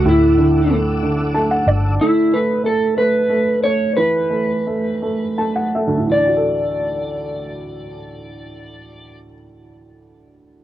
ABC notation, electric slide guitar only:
X:1
M:6/8
L:1/8
Q:3/8=56
K:D
V:1 name="Electric slide guitar"
E2 z4 | E B A B2 c | B4- B z | d6- |
d6 |]